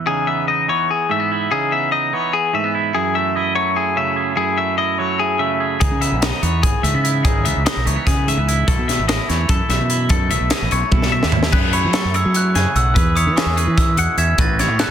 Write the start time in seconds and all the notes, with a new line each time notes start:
Already playing: E2 E3
0.06 C#3 D#4 G#4
0.27 B3 E5
0.48 D#4 D#5
0.68 E3 B3 C#5
0.91 G#4
1.09 G#2 A3 E5
1.20 B3
1.32 E4
1.51 C#3 D#4 G#4
1.72 B3 E5
1.92 D#4 D#5
2.13 E3 B3 C#5
2.33 G#4
2.53 G#2 A3 E5
2.64 B3
2.75 E4
2.95 F#2 E4 G#4
3.15 A3 E5
3.35 E4 D#5
3.55 F#3 A3 C#5
3.76 E4 G#4
3.96 C#3 A3 E5
4.16 G#4
4.36 F#2 E4 G#4
4.58 A3 E5
4.78 E4 D#5
4.98 F#3 A3 C#5
5.19 E4 G#4
5.39 C#3 A3 E5
5.60 G#4
5.79 C#2 C#3 D#4 G#4, kick, closed hi-hat
5.91 C#3
6.01 B3 E5, closed hi-hat
6.12 B1
6.22 D#4 D#5, snare, closed hi-hat
6.42 E2 E3 B3 C#5, closed hi-hat
6.63 G#1 G#4, kick, closed hi-hat
6.82 C#2 G#2 A3 E5, closed hi-hat
6.94 C#3 B3
7.04 E4, closed hi-hat
7.25 G#1 C#3 D#4 G#4, kick, closed hi-hat
7.45 C#2 B3 E5, closed hi-hat
7.56 C#2
7.66 D#4 D#5, snare, closed hi-hat
7.77 B1
7.85 C#2 E3 A3 C#5, closed hi-hat
7.96 B3
8.07 C#3 G#4, kick, snare, closed hi-hat
8.27 G#2 A3 E5, closed hi-hat
8.37 C#2 B3
8.48 E4, closed hi-hat
8.68 B1 B2 E4 A4, kick, closed hi-hat
8.78 B2
8.88 A3 E5, snare, closed hi-hat
8.99 A1
9.08 E4 D#5, snare, closed hi-hat
9.29 E2 E3 A3 C#5, snare, closed hi-hat
9.49 F#2 E4 A4, kick, closed hi-hat
9.69 B1 F#2 A3 E5, snare, closed hi-hat
9.80 B2
9.90 E4, closed hi-hat
10.09 F#2 B2 E4 A4, kick, closed hi-hat
10.31 B1 A3 E5, closed hi-hat
10.41 B1
10.50 E4 D#5, snare, closed hi-hat
10.62 A1
10.71 B1 A3 C#5, closed hi-hat
10.92 B2 E4 A4, kick, high tom
11.02 snare
11.11 F#2 A3 E5
11.23 D#2, snare
11.32 E4, floor tom
11.43 snare
11.51 F#2 G#4 B4, kick, crash
11.73 E4 C#5 B5, closed hi-hat
11.84 F#3
11.93 F#3 A3 A4 C#6, snare, closed hi-hat
12.05 F#2
12.14 G#4 C#5 E6, closed hi-hat
12.25 F#3
12.34 E4 F#6, closed hi-hat
12.55 F#2 C#3 G#4 G#5, snare, closed hi-hat
12.75 B1 A3 F#5 E6, closed hi-hat
12.95 E2 G#4 B4, kick, closed hi-hat
13.15 E4 C#5 D#6, closed hi-hat
13.26 E3
13.36 E3 C#4 G#4 C#6, snare, closed hi-hat
13.46 E2
13.57 G#4 B4, closed hi-hat
13.67 E3
13.77 E4 E6, kick, snare, closed hi-hat
13.97 E2 B2 G#4 F#5, closed hi-hat
14.17 E2 C#4 E5 G#6, closed hi-hat
14.38 A1 A2 F#4 B4 A6, kick, closed hi-hat
14.59 E4 C#5 G#6, snare, closed hi-hat
14.68 A2
14.79 E3 C#4 A4 F#6, snare, closed hi-hat